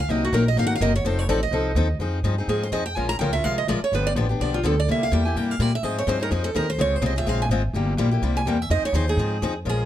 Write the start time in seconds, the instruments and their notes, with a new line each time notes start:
0.00 steel-string acoustic guitar F5
0.09 upright bass C2, steel-string acoustic guitar C3 F#3 A#3 D#4 A#4 D#5
0.25 steel-string acoustic guitar F#4
0.32 upright bass A#1, steel-string acoustic guitar C3 F#3 A#3 D#4 A#4
0.48 steel-string acoustic guitar D#5
0.56 upright bass G#1, steel-string acoustic guitar C3 F#3 A#3 D#4 A#4 F5
0.67 steel-string acoustic guitar F#5
0.75 steel-string acoustic guitar F5
0.80 upright bass F#1, steel-string acoustic guitar C3 F#3 A#3 D#4 A#4 D#5
0.96 steel-string acoustic guitar C#5
1.04 upright bass F1, steel-string acoustic guitar F3 C4 D#4 A4 C5
1.19 steel-string acoustic guitar C#5
1.28 upright bass A1, steel-string acoustic guitar F3 C4 D#4 A4 D5
1.43 steel-string acoustic guitar D#5
1.51 upright bass C2, steel-string acoustic guitar F3 C4 D#4 A4
1.75 upright bass D#2, steel-string acoustic guitar F3 C4 D#4 A4
1.99 upright bass F2, steel-string acoustic guitar F3 C4 D#4 G#4
2.23 upright bass G2, steel-string acoustic guitar F3 C4 D#4 G#4
2.38 steel-string acoustic guitar C4 D#4 G#4
2.47 upright bass G#2, steel-string acoustic guitar F3 C4 D#4 G#4
2.63 steel-string acoustic guitar C5
2.72 upright bass F2, steel-string acoustic guitar F3 C4 D#4 G#4 D#5
2.86 steel-string acoustic guitar G5
2.96 upright bass A#1, steel-string acoustic guitar F3 G#3 C#4 F4 A#4 G#5
3.09 steel-string acoustic guitar A#5
3.19 upright bass C#2, steel-string acoustic guitar F3 G#3 C#4 F4 A#4 G5
3.33 steel-string acoustic guitar C#4 F4 A#4 E5
3.44 upright bass C2, steel-string acoustic guitar F3 G#3 C#4 F4 A#4 F5
3.58 steel-string acoustic guitar D#5
3.68 upright bass A#1, steel-string acoustic guitar F3 G#3 C#4 F4 A#4 D5
3.80 steel-string acoustic guitar C#5, muted upright bass stroke
3.92 upright bass G1, steel-string acoustic guitar D3 F3 B3 D4 G4 B4
4.07 steel-string acoustic guitar D5
4.16 upright bass A1, steel-string acoustic guitar D3 F3 B3 D4 G4
4.29 steel-string acoustic guitar B3 D4 G4
4.40 upright bass B1, steel-string acoustic guitar D3 F3 B3 D4 G4 D5
4.54 steel-string acoustic guitar F4
4.63 upright bass D2, steel-string acoustic guitar D3 F3 B3 D4 G4 A4
4.80 steel-string acoustic guitar D5
4.88 upright bass C2, steel-string acoustic guitar C3 G3 A#3 E4 G4 E5
5.03 steel-string acoustic guitar F5
5.12 upright bass E2, steel-string acoustic guitar C3 G3 A#3 E4 G4 G5
5.25 steel-string acoustic guitar A#3 E4 G4 G#5
5.35 upright bass G2, steel-string acoustic guitar C3 G3 A#3 E4 G4 G5
5.51 steel-string acoustic guitar F5
5.59 upright bass A#2, steel-string acoustic guitar C3 G3 A#3 E4 G4 D5
5.75 steel-string acoustic guitar E5
5.83 upright bass G#2, steel-string acoustic guitar F3 C4 D#4 G#4 D#5
5.98 steel-string acoustic guitar C#5
6.07 upright bass G2, steel-string acoustic guitar F3 C4 D#4 G#4 C5
6.20 steel-string acoustic guitar C4 D#4 G#4 A#4
6.31 upright bass F2, steel-string acoustic guitar F3 C4 D#4 G#4
6.44 steel-string acoustic guitar A4
6.54 upright bass D#2, steel-string acoustic guitar F3 C4 D#4 G#4 A#4
6.70 steel-string acoustic guitar C5
6.78 upright bass C#2, steel-string acoustic guitar C#3 G#3 C4 F4 G#4 C#5
6.96 steel-string acoustic guitar C5
7.02 upright bass C2, steel-string acoustic guitar C#3 G#3 C4 F4 G#4
7.06 steel-string acoustic guitar D#5
7.16 steel-string acoustic guitar C4 F4 G#4 E5
7.25 upright bass A#1, steel-string acoustic guitar C#3 G#3 C4 F4 G#4 F5
7.42 steel-string acoustic guitar G#5
7.49 upright bass G#1, steel-string acoustic guitar C#3 G#3 C4 F4 G#4
7.73 upright bass G1, steel-string acoustic guitar C3 G3 A#3 E4 G4
7.97 upright bass A#1, steel-string acoustic guitar C3 G3 A#3 E4 G4
8.11 steel-string acoustic guitar A#3 E4 G4
8.22 upright bass C2, steel-string acoustic guitar C3 G3 A#3 E4 G4
8.37 steel-string acoustic guitar G#5
8.46 upright bass E2, steel-string acoustic guitar C3 G3 A#3 E4 G4 G5
8.62 steel-string acoustic guitar E5
8.70 upright bass F2, steel-string acoustic guitar F3 C4 D#4 G#4 D#5
8.83 steel-string acoustic guitar C#5, muted upright bass stroke
8.93 upright bass D#2, steel-string acoustic guitar F3 C4 D#4 G#4 C5
9.08 steel-string acoustic guitar C4 D#4 G#4
9.17 upright bass G#2, steel-string acoustic guitar F3 C4 D#4 G#4
9.42 upright bass F2, steel-string acoustic guitar F3 C4 D#4 G#4
9.65 upright bass A#1, steel-string acoustic guitar F3 G#3 C#4 F4 A#4
9.69 steel-string acoustic guitar G#4